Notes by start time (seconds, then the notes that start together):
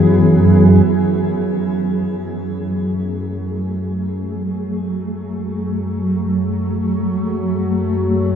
Already playing: F#2 E3 F#3 B3 G#4
0.84 F#2 F#3
2.20 A3